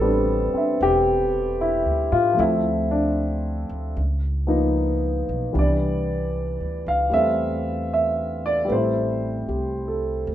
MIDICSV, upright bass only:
0, 0, Header, 1, 3, 480
1, 0, Start_track
1, 0, Key_signature, 0, "major"
1, 0, Tempo, 788436
1, 1454, Time_signature, 4, 2, 24, 8
1, 6300, End_track
2, 0, Start_track
2, 0, Title_t, "Upright bass"
2, 0, Program_c, 0, 32
2, 0, Note_on_c, 0, 33, 85
2, 306, Note_off_c, 0, 33, 0
2, 491, Note_on_c, 0, 28, 74
2, 1107, Note_off_c, 0, 28, 0
2, 1131, Note_on_c, 0, 38, 56
2, 1281, Note_off_c, 0, 38, 0
2, 1292, Note_on_c, 0, 45, 65
2, 1441, Note_off_c, 0, 45, 0
2, 1454, Note_on_c, 0, 38, 79
2, 2227, Note_off_c, 0, 38, 0
2, 2249, Note_on_c, 0, 38, 62
2, 2401, Note_off_c, 0, 38, 0
2, 2415, Note_on_c, 0, 37, 73
2, 3189, Note_off_c, 0, 37, 0
2, 3220, Note_on_c, 0, 35, 60
2, 3367, Note_off_c, 0, 35, 0
2, 3379, Note_on_c, 0, 36, 70
2, 3993, Note_off_c, 0, 36, 0
2, 4021, Note_on_c, 0, 38, 48
2, 4167, Note_off_c, 0, 38, 0
2, 4179, Note_on_c, 0, 37, 60
2, 4326, Note_off_c, 0, 37, 0
2, 4332, Note_on_c, 0, 40, 64
2, 5269, Note_off_c, 0, 40, 0
2, 5293, Note_on_c, 0, 33, 74
2, 5749, Note_off_c, 0, 33, 0
2, 5775, Note_on_c, 0, 36, 61
2, 6230, Note_off_c, 0, 36, 0
2, 6253, Note_on_c, 0, 38, 68
2, 6300, Note_off_c, 0, 38, 0
2, 6300, End_track
3, 0, Start_track
3, 0, Title_t, "Muted upright bass strokes"
3, 329, Note_on_c, 9, 29, 36
3, 390, Note_off_c, 9, 29, 0
3, 6300, End_track
0, 0, End_of_file